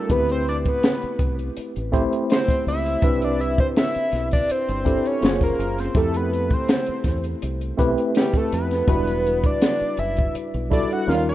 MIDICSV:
0, 0, Header, 1, 6, 480
1, 0, Start_track
1, 0, Tempo, 731707
1, 64, Time_signature, 4, 2, 24, 8
1, 7444, End_track
2, 0, Start_track
2, 0, Title_t, "Analog synth lead"
2, 0, Program_c, 0, 81
2, 0, Note_on_c, 0, 69, 85
2, 79, Note_on_c, 0, 71, 96
2, 89, Note_off_c, 0, 69, 0
2, 199, Note_off_c, 0, 71, 0
2, 208, Note_on_c, 0, 72, 92
2, 304, Note_off_c, 0, 72, 0
2, 320, Note_on_c, 0, 74, 86
2, 374, Note_off_c, 0, 74, 0
2, 448, Note_on_c, 0, 71, 79
2, 893, Note_off_c, 0, 71, 0
2, 1519, Note_on_c, 0, 72, 104
2, 1735, Note_off_c, 0, 72, 0
2, 1760, Note_on_c, 0, 76, 108
2, 2127, Note_on_c, 0, 74, 98
2, 2137, Note_off_c, 0, 76, 0
2, 2234, Note_on_c, 0, 76, 100
2, 2244, Note_off_c, 0, 74, 0
2, 2357, Note_off_c, 0, 76, 0
2, 2362, Note_on_c, 0, 72, 89
2, 2410, Note_off_c, 0, 72, 0
2, 2476, Note_on_c, 0, 76, 111
2, 2812, Note_off_c, 0, 76, 0
2, 2840, Note_on_c, 0, 74, 101
2, 2960, Note_on_c, 0, 72, 91
2, 2970, Note_off_c, 0, 74, 0
2, 3324, Note_on_c, 0, 73, 95
2, 3334, Note_off_c, 0, 72, 0
2, 3558, Note_off_c, 0, 73, 0
2, 3565, Note_on_c, 0, 70, 78
2, 3803, Note_on_c, 0, 72, 87
2, 3813, Note_off_c, 0, 70, 0
2, 3922, Note_on_c, 0, 69, 88
2, 3931, Note_off_c, 0, 72, 0
2, 4044, Note_on_c, 0, 71, 95
2, 4054, Note_off_c, 0, 69, 0
2, 4288, Note_on_c, 0, 72, 91
2, 4298, Note_off_c, 0, 71, 0
2, 4760, Note_off_c, 0, 72, 0
2, 5359, Note_on_c, 0, 67, 80
2, 5491, Note_on_c, 0, 69, 74
2, 5501, Note_off_c, 0, 67, 0
2, 5593, Note_off_c, 0, 69, 0
2, 5601, Note_on_c, 0, 71, 96
2, 6206, Note_on_c, 0, 74, 95
2, 6216, Note_off_c, 0, 71, 0
2, 6554, Note_on_c, 0, 76, 85
2, 6564, Note_off_c, 0, 74, 0
2, 6789, Note_off_c, 0, 76, 0
2, 7039, Note_on_c, 0, 74, 92
2, 7168, Note_on_c, 0, 78, 104
2, 7177, Note_off_c, 0, 74, 0
2, 7275, Note_on_c, 0, 77, 103
2, 7285, Note_off_c, 0, 78, 0
2, 7397, Note_off_c, 0, 77, 0
2, 7406, Note_on_c, 0, 75, 87
2, 7444, Note_off_c, 0, 75, 0
2, 7444, End_track
3, 0, Start_track
3, 0, Title_t, "Tine electric piano"
3, 0, Program_c, 1, 4
3, 0, Control_c, 1, 64, 127
3, 0, Note_on_c, 1, 55, 68
3, 0, Note_on_c, 1, 61, 61
3, 0, Note_on_c, 1, 63, 55
3, 0, Note_on_c, 1, 65, 58
3, 0, Note_on_c, 1, 70, 73
3, 59, Note_on_c, 1, 57, 66
3, 62, Note_on_c, 1, 60, 63
3, 64, Note_on_c, 1, 64, 61
3, 68, Note_on_c, 1, 67, 62
3, 72, Note_on_c, 1, 71, 74
3, 73, Control_c, 1, 64, 0
3, 74, Note_off_c, 1, 61, 0
3, 76, Note_off_c, 1, 63, 0
3, 78, Note_off_c, 1, 65, 0
3, 79, Note_off_c, 1, 55, 0
3, 79, Note_off_c, 1, 70, 0
3, 180, Control_c, 1, 64, 127
3, 884, Note_off_c, 1, 57, 0
3, 885, Note_off_c, 1, 60, 0
3, 887, Note_off_c, 1, 64, 0
3, 888, Note_off_c, 1, 67, 0
3, 891, Note_off_c, 1, 71, 0
3, 1259, Note_on_c, 1, 57, 89
3, 1262, Note_on_c, 1, 60, 79
3, 1267, Note_on_c, 1, 64, 82
3, 1270, Note_on_c, 1, 67, 76
3, 1274, Note_on_c, 1, 72, 94
3, 1881, Note_off_c, 1, 57, 0
3, 1882, Note_off_c, 1, 60, 0
3, 1885, Note_off_c, 1, 64, 0
3, 1886, Note_off_c, 1, 67, 0
3, 1888, Note_off_c, 1, 72, 0
3, 1980, Note_on_c, 1, 60, 67
3, 1983, Note_on_c, 1, 62, 66
3, 1988, Note_on_c, 1, 64, 62
3, 1989, Note_on_c, 1, 67, 58
3, 1992, Control_c, 1, 64, 0
3, 1994, Note_on_c, 1, 71, 81
3, 2116, Control_c, 1, 64, 127
3, 2805, Note_off_c, 1, 60, 0
3, 2806, Note_off_c, 1, 62, 0
3, 2809, Note_off_c, 1, 64, 0
3, 2809, Note_off_c, 1, 67, 0
3, 2811, Note_off_c, 1, 71, 0
3, 3178, Note_on_c, 1, 60, 71
3, 3182, Note_on_c, 1, 62, 64
3, 3184, Note_on_c, 1, 64, 67
3, 3189, Note_on_c, 1, 67, 70
3, 3192, Note_on_c, 1, 69, 77
3, 3418, Note_on_c, 1, 58, 71
3, 3421, Note_off_c, 1, 60, 0
3, 3422, Note_on_c, 1, 61, 63
3, 3423, Note_off_c, 1, 62, 0
3, 3424, Note_off_c, 1, 64, 0
3, 3424, Note_on_c, 1, 65, 64
3, 3426, Note_off_c, 1, 67, 0
3, 3428, Note_off_c, 1, 69, 0
3, 3429, Note_on_c, 1, 68, 62
3, 3431, Note_on_c, 1, 72, 78
3, 3433, Control_c, 1, 64, 0
3, 3538, Control_c, 1, 64, 127
3, 3834, Note_off_c, 1, 58, 0
3, 3836, Note_off_c, 1, 61, 0
3, 3837, Note_off_c, 1, 65, 0
3, 3839, Note_off_c, 1, 68, 0
3, 3840, Note_off_c, 1, 72, 0
3, 3901, Note_on_c, 1, 57, 74
3, 3905, Note_on_c, 1, 60, 63
3, 3908, Note_on_c, 1, 64, 63
3, 3912, Control_c, 1, 64, 0
3, 3912, Note_on_c, 1, 67, 70
3, 3915, Note_on_c, 1, 69, 75
3, 4010, Control_c, 1, 64, 127
3, 4725, Note_off_c, 1, 57, 0
3, 4727, Note_off_c, 1, 60, 0
3, 4729, Note_off_c, 1, 64, 0
3, 4731, Note_off_c, 1, 67, 0
3, 4732, Note_off_c, 1, 69, 0
3, 5100, Note_on_c, 1, 57, 86
3, 5102, Note_on_c, 1, 60, 80
3, 5107, Note_on_c, 1, 64, 81
3, 5110, Note_on_c, 1, 67, 81
3, 5112, Note_on_c, 1, 71, 96
3, 5721, Note_off_c, 1, 57, 0
3, 5722, Note_off_c, 1, 60, 0
3, 5725, Note_off_c, 1, 64, 0
3, 5726, Note_off_c, 1, 67, 0
3, 5727, Note_off_c, 1, 71, 0
3, 5821, Note_on_c, 1, 55, 71
3, 5824, Note_on_c, 1, 62, 64
3, 5827, Note_on_c, 1, 64, 67
3, 5829, Note_on_c, 1, 66, 71
3, 5831, Control_c, 1, 64, 0
3, 5834, Note_on_c, 1, 71, 76
3, 5935, Control_c, 1, 64, 127
3, 6645, Note_off_c, 1, 55, 0
3, 6647, Note_off_c, 1, 62, 0
3, 6648, Note_off_c, 1, 64, 0
3, 6649, Note_off_c, 1, 66, 0
3, 6651, Note_off_c, 1, 71, 0
3, 7020, Note_on_c, 1, 55, 70
3, 7023, Note_on_c, 1, 62, 65
3, 7027, Note_on_c, 1, 64, 73
3, 7031, Note_on_c, 1, 66, 68
3, 7034, Note_on_c, 1, 69, 82
3, 7261, Note_on_c, 1, 54, 58
3, 7262, Note_off_c, 1, 55, 0
3, 7263, Note_off_c, 1, 62, 0
3, 7265, Note_off_c, 1, 64, 0
3, 7265, Note_on_c, 1, 61, 63
3, 7267, Note_off_c, 1, 66, 0
3, 7268, Note_on_c, 1, 63, 66
3, 7269, Note_off_c, 1, 69, 0
3, 7272, Control_c, 1, 64, 0
3, 7272, Note_on_c, 1, 65, 64
3, 7275, Note_on_c, 1, 70, 78
3, 7304, Note_on_c, 1, 55, 76
3, 7308, Note_off_c, 1, 54, 0
3, 7396, Control_c, 1, 64, 127
3, 7444, Note_off_c, 1, 55, 0
3, 7444, Note_off_c, 1, 61, 0
3, 7444, Note_off_c, 1, 63, 0
3, 7444, Note_off_c, 1, 65, 0
3, 7444, Note_off_c, 1, 70, 0
3, 7444, End_track
4, 0, Start_track
4, 0, Title_t, "Fingered electric bass"
4, 0, Program_c, 2, 33
4, 66, Note_on_c, 2, 38, 97
4, 442, Note_off_c, 2, 38, 0
4, 785, Note_on_c, 2, 36, 91
4, 973, Note_off_c, 2, 36, 0
4, 1159, Note_on_c, 2, 33, 86
4, 1345, Note_off_c, 2, 33, 0
4, 1750, Note_on_c, 2, 37, 90
4, 1936, Note_off_c, 2, 37, 0
4, 1987, Note_on_c, 2, 36, 106
4, 2363, Note_off_c, 2, 36, 0
4, 2708, Note_on_c, 2, 35, 91
4, 2895, Note_off_c, 2, 35, 0
4, 3076, Note_on_c, 2, 31, 93
4, 3263, Note_off_c, 2, 31, 0
4, 3428, Note_on_c, 2, 30, 94
4, 3615, Note_off_c, 2, 30, 0
4, 3668, Note_on_c, 2, 30, 95
4, 3855, Note_off_c, 2, 30, 0
4, 3905, Note_on_c, 2, 41, 103
4, 4282, Note_off_c, 2, 41, 0
4, 4624, Note_on_c, 2, 40, 82
4, 4812, Note_off_c, 2, 40, 0
4, 4874, Note_on_c, 2, 36, 95
4, 5059, Note_off_c, 2, 36, 0
4, 5113, Note_on_c, 2, 35, 101
4, 5210, Note_off_c, 2, 35, 0
4, 5594, Note_on_c, 2, 41, 91
4, 5779, Note_off_c, 2, 41, 0
4, 5826, Note_on_c, 2, 28, 112
4, 6202, Note_off_c, 2, 28, 0
4, 6549, Note_on_c, 2, 30, 95
4, 6736, Note_off_c, 2, 30, 0
4, 6917, Note_on_c, 2, 35, 90
4, 7103, Note_off_c, 2, 35, 0
4, 7268, Note_on_c, 2, 39, 111
4, 7444, Note_off_c, 2, 39, 0
4, 7444, End_track
5, 0, Start_track
5, 0, Title_t, "Muted fingered electric bass strokes"
5, 680, Note_on_c, 9, 29, 45
5, 745, Note_off_c, 9, 29, 0
5, 1033, Note_on_c, 9, 29, 42
5, 1098, Note_off_c, 9, 29, 0
5, 2598, Note_on_c, 9, 29, 46
5, 2664, Note_off_c, 9, 29, 0
5, 2950, Note_on_c, 9, 29, 44
5, 3016, Note_off_c, 9, 29, 0
5, 4519, Note_on_c, 9, 29, 47
5, 4584, Note_off_c, 9, 29, 0
5, 6437, Note_on_c, 9, 29, 49
5, 6503, Note_off_c, 9, 29, 0
5, 6789, Note_on_c, 9, 29, 48
5, 6855, Note_off_c, 9, 29, 0
5, 7444, End_track
6, 0, Start_track
6, 0, Title_t, "Drums"
6, 63, Note_on_c, 9, 42, 65
6, 64, Note_on_c, 9, 36, 101
6, 129, Note_off_c, 9, 42, 0
6, 130, Note_off_c, 9, 36, 0
6, 192, Note_on_c, 9, 42, 46
6, 257, Note_off_c, 9, 42, 0
6, 317, Note_on_c, 9, 42, 48
6, 382, Note_off_c, 9, 42, 0
6, 428, Note_on_c, 9, 42, 46
6, 430, Note_on_c, 9, 36, 93
6, 494, Note_off_c, 9, 42, 0
6, 496, Note_off_c, 9, 36, 0
6, 546, Note_on_c, 9, 42, 85
6, 551, Note_on_c, 9, 38, 110
6, 612, Note_off_c, 9, 42, 0
6, 616, Note_off_c, 9, 38, 0
6, 664, Note_on_c, 9, 42, 44
6, 730, Note_off_c, 9, 42, 0
6, 780, Note_on_c, 9, 42, 70
6, 782, Note_on_c, 9, 36, 85
6, 846, Note_off_c, 9, 42, 0
6, 847, Note_off_c, 9, 36, 0
6, 910, Note_on_c, 9, 42, 44
6, 976, Note_off_c, 9, 42, 0
6, 1028, Note_on_c, 9, 42, 78
6, 1093, Note_off_c, 9, 42, 0
6, 1154, Note_on_c, 9, 42, 48
6, 1220, Note_off_c, 9, 42, 0
6, 1269, Note_on_c, 9, 36, 80
6, 1276, Note_on_c, 9, 42, 55
6, 1335, Note_off_c, 9, 36, 0
6, 1342, Note_off_c, 9, 42, 0
6, 1395, Note_on_c, 9, 42, 45
6, 1461, Note_off_c, 9, 42, 0
6, 1508, Note_on_c, 9, 42, 68
6, 1522, Note_on_c, 9, 38, 99
6, 1573, Note_off_c, 9, 42, 0
6, 1588, Note_off_c, 9, 38, 0
6, 1630, Note_on_c, 9, 36, 86
6, 1639, Note_on_c, 9, 42, 48
6, 1695, Note_off_c, 9, 36, 0
6, 1705, Note_off_c, 9, 42, 0
6, 1757, Note_on_c, 9, 46, 52
6, 1822, Note_off_c, 9, 46, 0
6, 1876, Note_on_c, 9, 42, 48
6, 1941, Note_off_c, 9, 42, 0
6, 1983, Note_on_c, 9, 42, 65
6, 1984, Note_on_c, 9, 36, 107
6, 2049, Note_off_c, 9, 36, 0
6, 2049, Note_off_c, 9, 42, 0
6, 2112, Note_on_c, 9, 42, 47
6, 2177, Note_off_c, 9, 42, 0
6, 2239, Note_on_c, 9, 42, 55
6, 2305, Note_off_c, 9, 42, 0
6, 2349, Note_on_c, 9, 42, 46
6, 2351, Note_on_c, 9, 36, 96
6, 2415, Note_off_c, 9, 42, 0
6, 2416, Note_off_c, 9, 36, 0
6, 2470, Note_on_c, 9, 42, 77
6, 2474, Note_on_c, 9, 38, 113
6, 2535, Note_off_c, 9, 42, 0
6, 2540, Note_off_c, 9, 38, 0
6, 2587, Note_on_c, 9, 42, 41
6, 2653, Note_off_c, 9, 42, 0
6, 2702, Note_on_c, 9, 42, 70
6, 2717, Note_on_c, 9, 38, 36
6, 2767, Note_off_c, 9, 42, 0
6, 2783, Note_off_c, 9, 38, 0
6, 2829, Note_on_c, 9, 42, 45
6, 2841, Note_on_c, 9, 36, 76
6, 2895, Note_off_c, 9, 42, 0
6, 2907, Note_off_c, 9, 36, 0
6, 2950, Note_on_c, 9, 42, 79
6, 3015, Note_off_c, 9, 42, 0
6, 3074, Note_on_c, 9, 42, 49
6, 3139, Note_off_c, 9, 42, 0
6, 3188, Note_on_c, 9, 36, 75
6, 3197, Note_on_c, 9, 42, 52
6, 3254, Note_off_c, 9, 36, 0
6, 3262, Note_off_c, 9, 42, 0
6, 3316, Note_on_c, 9, 42, 48
6, 3381, Note_off_c, 9, 42, 0
6, 3427, Note_on_c, 9, 42, 70
6, 3441, Note_on_c, 9, 38, 95
6, 3493, Note_off_c, 9, 42, 0
6, 3507, Note_off_c, 9, 38, 0
6, 3548, Note_on_c, 9, 36, 81
6, 3559, Note_on_c, 9, 42, 49
6, 3614, Note_off_c, 9, 36, 0
6, 3624, Note_off_c, 9, 42, 0
6, 3674, Note_on_c, 9, 42, 79
6, 3740, Note_off_c, 9, 42, 0
6, 3794, Note_on_c, 9, 42, 49
6, 3802, Note_on_c, 9, 38, 35
6, 3859, Note_off_c, 9, 42, 0
6, 3868, Note_off_c, 9, 38, 0
6, 3901, Note_on_c, 9, 42, 59
6, 3902, Note_on_c, 9, 36, 108
6, 3967, Note_off_c, 9, 42, 0
6, 3968, Note_off_c, 9, 36, 0
6, 4028, Note_on_c, 9, 42, 48
6, 4094, Note_off_c, 9, 42, 0
6, 4154, Note_on_c, 9, 42, 49
6, 4220, Note_off_c, 9, 42, 0
6, 4266, Note_on_c, 9, 42, 46
6, 4269, Note_on_c, 9, 36, 90
6, 4332, Note_off_c, 9, 42, 0
6, 4334, Note_off_c, 9, 36, 0
6, 4385, Note_on_c, 9, 42, 79
6, 4390, Note_on_c, 9, 38, 122
6, 4451, Note_off_c, 9, 42, 0
6, 4455, Note_off_c, 9, 38, 0
6, 4501, Note_on_c, 9, 42, 46
6, 4567, Note_off_c, 9, 42, 0
6, 4618, Note_on_c, 9, 42, 75
6, 4621, Note_on_c, 9, 36, 86
6, 4634, Note_on_c, 9, 38, 33
6, 4684, Note_off_c, 9, 42, 0
6, 4686, Note_off_c, 9, 36, 0
6, 4699, Note_off_c, 9, 38, 0
6, 4748, Note_on_c, 9, 42, 45
6, 4813, Note_off_c, 9, 42, 0
6, 4869, Note_on_c, 9, 42, 77
6, 4934, Note_off_c, 9, 42, 0
6, 4994, Note_on_c, 9, 42, 49
6, 5059, Note_off_c, 9, 42, 0
6, 5109, Note_on_c, 9, 36, 83
6, 5117, Note_on_c, 9, 42, 58
6, 5174, Note_off_c, 9, 36, 0
6, 5183, Note_off_c, 9, 42, 0
6, 5233, Note_on_c, 9, 42, 48
6, 5299, Note_off_c, 9, 42, 0
6, 5345, Note_on_c, 9, 42, 71
6, 5359, Note_on_c, 9, 38, 91
6, 5411, Note_off_c, 9, 42, 0
6, 5425, Note_off_c, 9, 38, 0
6, 5468, Note_on_c, 9, 36, 86
6, 5477, Note_on_c, 9, 42, 47
6, 5534, Note_off_c, 9, 36, 0
6, 5542, Note_off_c, 9, 42, 0
6, 5592, Note_on_c, 9, 42, 77
6, 5658, Note_off_c, 9, 42, 0
6, 5713, Note_on_c, 9, 42, 49
6, 5721, Note_on_c, 9, 38, 35
6, 5778, Note_off_c, 9, 42, 0
6, 5787, Note_off_c, 9, 38, 0
6, 5823, Note_on_c, 9, 36, 115
6, 5823, Note_on_c, 9, 42, 65
6, 5889, Note_off_c, 9, 36, 0
6, 5889, Note_off_c, 9, 42, 0
6, 5952, Note_on_c, 9, 42, 47
6, 6017, Note_off_c, 9, 42, 0
6, 6078, Note_on_c, 9, 42, 54
6, 6144, Note_off_c, 9, 42, 0
6, 6188, Note_on_c, 9, 42, 48
6, 6191, Note_on_c, 9, 36, 101
6, 6254, Note_off_c, 9, 42, 0
6, 6256, Note_off_c, 9, 36, 0
6, 6308, Note_on_c, 9, 42, 84
6, 6312, Note_on_c, 9, 38, 109
6, 6374, Note_off_c, 9, 42, 0
6, 6378, Note_off_c, 9, 38, 0
6, 6427, Note_on_c, 9, 42, 45
6, 6492, Note_off_c, 9, 42, 0
6, 6542, Note_on_c, 9, 42, 69
6, 6608, Note_off_c, 9, 42, 0
6, 6669, Note_on_c, 9, 42, 48
6, 6681, Note_on_c, 9, 36, 84
6, 6735, Note_off_c, 9, 42, 0
6, 6747, Note_off_c, 9, 36, 0
6, 6790, Note_on_c, 9, 42, 79
6, 6856, Note_off_c, 9, 42, 0
6, 6915, Note_on_c, 9, 42, 46
6, 6980, Note_off_c, 9, 42, 0
6, 7029, Note_on_c, 9, 36, 75
6, 7037, Note_on_c, 9, 42, 61
6, 7095, Note_off_c, 9, 36, 0
6, 7103, Note_off_c, 9, 42, 0
6, 7155, Note_on_c, 9, 42, 45
6, 7221, Note_off_c, 9, 42, 0
6, 7279, Note_on_c, 9, 38, 55
6, 7345, Note_off_c, 9, 38, 0
6, 7444, End_track
0, 0, End_of_file